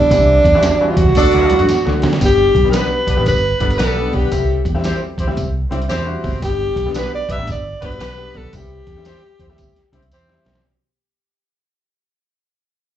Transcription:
Already playing: tenor saxophone D4
0.11 fingered electric bass C2, upright piano E3 G3 C4 E4 G4, kick, closed hi-hat, tambourine, muted conga
0.44 fingered electric bass E2, kick, closed hi-hat, muted conga
0.54 upright piano E3 G3 C4 E4 F#4, snare
0.63 snare, closed hi-hat, tambourine, high conga
0.81 upright piano E3 G3 C4 E4 F#4
0.90 tenor saxophone F4
0.97 fingered electric bass E2, tenor saxophone F#4, kick, closed hi-hat
1.06 fingered electric bass C2, snare
1.15 fingered electric bass D2, upright piano D3 F#3 A3 D4 F#4, horn section D4 F#4 A4 D5, kick, closed hi-hat, tambourine, muted conga
1.33 fingered electric bass D2, closed hi-hat
1.50 closed hi-hat, muted conga, low conga
1.59 fingered electric bass F#2, upright piano D3 F#3 A3 D4 F#4, closed hi-hat
1.69 muted fingered electric bass stroke, snare, closed hi-hat, tambourine, high conga
1.85 fingered electric bass D2, upright piano D3 F#3 A3 D4 F#4, snare
2.02 fingered electric bass D3, snare, open hi-hat, high conga
2.13 snare
2.21 fingered electric bass G1, upright piano G3 B3 D4 G4, tenor saxophone G4, kick, closed hi-hat, tambourine, muted conga
2.55 fingered electric bass B1, kick, closed hi-hat, muted conga
2.64 upright piano G3 B3 D4 G4, snare
2.71 horn section B3 D4 G4 B4, tenor saxophone A#4, snare, closed hi-hat, tambourine, high conga
2.76 tenor saxophone B4
3.07 fingered electric bass B1, horn section B3 D4 G4 B4, kick, closed hi-hat
3.17 fingered electric bass A1, upright piano G3 B3 D4 G4, snare
3.26 fingered electric bass G1, tenor saxophone B4, kick, closed hi-hat, tambourine, muted conga
3.59 fingered electric bass G1, upright piano G3 B3 D4 A4, horn section B3 D4 G4 B4, kick, closed hi-hat, muted conga, low conga
3.70 tenor saxophone A4, closed hi-hat
3.78 fingered electric bass B1, horn section B3 D4 G4 B4, snare, closed hi-hat, tambourine, high conga
3.96 upright piano G3 B3 D4 G4
4.13 fingered electric bass B1, tenor saxophone G4, kick, open hi-hat, high conga
4.32 fingered electric bass C2, upright piano G3 C4 E4 G4, kick, closed hi-hat, tambourine, muted conga
4.65 fingered electric bass E2, kick, closed hi-hat, muted conga
4.74 upright piano G3 C4 E4 G4, snare
4.84 horn section C4 E4 G4 C5, snare, closed hi-hat, tambourine, high conga
5.18 fingered electric bass E2, horn section C4 E4 G4 C5, kick, closed hi-hat
5.27 fingered electric bass D2, upright piano G3 C4 E4 G4, snare
5.37 fingered electric bass C2, kick, closed hi-hat, tambourine, muted conga
5.70 fingered electric bass C2, upright piano G3 C4 E4 G4, horn section C4 E4 G4 C5, closed hi-hat, muted conga, low conga
5.82 closed hi-hat
5.88 fingered electric bass E2, horn section C4 E4 G4 C5, snare, closed hi-hat, tambourine, high conga
6.06 upright piano G3 C4 E4 F#4
6.23 fingered electric bass F#1, kick, open hi-hat, high conga
6.42 fingered electric bass G1, upright piano G3 B3 D4 G4, tenor saxophone G4, kick, closed hi-hat, tambourine, muted conga
6.76 fingered electric bass B1, kick, closed hi-hat, muted conga
6.86 upright piano G3 B3 D4 G4, snare
6.94 horn section B3 D4 G4 B4, tenor saxophone B4, snare, closed hi-hat, tambourine, high conga
7.14 tenor saxophone D5
7.29 fingered electric bass B1, horn section B3 D4 G4 B4, tenor saxophone E5, kick, closed hi-hat
7.38 fingered electric bass A1, upright piano G3 B3 D4 G4, snare
7.47 fingered electric bass G1, kick, closed hi-hat, tambourine, muted conga
7.51 tenor saxophone D5
7.81 fingered electric bass G1, upright piano G3 B3 D4 F#4, horn section B3 D4 G4 B4, kick, closed hi-hat, muted conga, low conga
7.85 tenor saxophone B4
7.92 closed hi-hat
7.99 fingered electric bass B1, horn section B3 D4 G4 B4, snare, closed hi-hat, tambourine, high conga
8.18 upright piano G3 B3 D4 G4
8.34 fingered electric bass B1, tenor saxophone A4, kick, open hi-hat, high conga
8.53 fingered electric bass C2, upright piano G3 C4 E4 G4, tenor saxophone G4, kick, closed hi-hat, tambourine, muted conga
8.87 fingered electric bass E2, kick, closed hi-hat, muted conga
8.96 upright piano G3 C4 E4 G4, snare
9.05 horn section C4 E4 G4 C5, snare, closed hi-hat, tambourine, high conga
9.39 fingered electric bass E2, horn section C4 E4 G4 C5, kick, closed hi-hat
9.49 fingered electric bass D2, upright piano G3 C4 E4 G4, snare
9.58 kick, closed hi-hat, tambourine, muted conga
9.76 snare, closed hi-hat
9.92 fingered electric bass C2, upright piano G3 C4 E4 G4, horn section C4 E4 G4 C5, closed hi-hat, muted conga, low conga
10.02 fingered electric bass C2, closed hi-hat
10.11 fingered electric bass E2, horn section C4 E4 G4 C5, closed hi-hat, tambourine, high conga
10.28 upright piano G3 C4 E4 G4, snare
10.45 fingered electric bass B1, snare, open hi-hat, high conga
10.55 snare

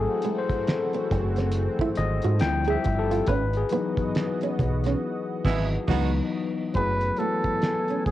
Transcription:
Already playing: analog synth pad E3 A3 C4 F#4, tine electric piano F#3 A3 C4 E4 G#4 A4
0.22 nylon-string guitar G#3, closed hi-hat
0.38 tine electric piano C5
0.49 kick, closed hi-hat
0.67 finger snap, snare, closed hi-hat
0.93 nylon-string guitar C4, closed hi-hat
1.11 fingered electric bass F#1, muted nylon-string guitar stroke, kick, snare, closed hi-hat
1.36 nylon-string guitar C4, snare, closed hi-hat
1.52 closed hi-hat
1.79 nylon-string guitar E4, kick
1.95 fingered electric bass G#1, tine electric piano D#5, muted nylon-string guitar stroke, closed hi-hat
2.22 fingered electric bass G#2, nylon-string guitar F#4, closed hi-hat
2.39 fingered electric bass D2, analog synth pad F3 E4 G4, tine electric piano F3 G3 C4 E4 G5, finger snap, snare, closed hi-hat
2.65 nylon-string guitar G#4, closed hi-hat
2.70 tine electric piano E5
2.84 fingered electric bass G1, muted nylon-string guitar stroke, kick, closed hi-hat
2.99 tine electric piano A4
3.11 nylon-string guitar F4, closed hi-hat
3.26 fingered electric bass G#1, analog synth pad E3 B3 F#4 D#5, nylon-string guitar C#4, tine electric piano B4, kick, closed hi-hat
3.53 tine electric piano G#4, closed hi-hat
3.69 tine electric piano E3 F#3 B3 D#4, nylon-string guitar B3, closed hi-hat
3.97 kick, closed hi-hat
4.15 finger snap, snare, closed hi-hat
4.41 nylon-string guitar C#4, closed hi-hat
4.59 fingered electric bass B1, muted nylon-string guitar stroke, kick, closed hi-hat
4.84 nylon-string guitar C#4, snare, closed hi-hat
5.45 fingered electric bass G#1, saxophone section G#3 B3 E4, kick, snare, crash
5.88 fingered electric bass C#2, tine electric piano E3 F#3 B3 D#4, analog synth pad B3, saxophone section B3 D#4 F#4, kick, snare, crash
6.73 fingered electric bass F#1, analog synth pad E3 A3 B3 G#5, tine electric piano F#3 A3 B3 E4, nylon-string guitar B3, flugelhorn B4, kick, closed hi-hat
6.78 tine electric piano G#4
7.01 closed hi-hat
7.17 tine electric piano F#3 A3 B3 E4, nylon-string guitar A3, flugelhorn A4, closed hi-hat
7.21 tine electric piano B4
7.44 kick, closed hi-hat
7.62 finger snap, snare, closed hi-hat
7.88 nylon-string guitar C#4, closed hi-hat
8.06 fingered electric bass G#1, flugelhorn G#4, muted nylon-string guitar stroke, kick, closed hi-hat

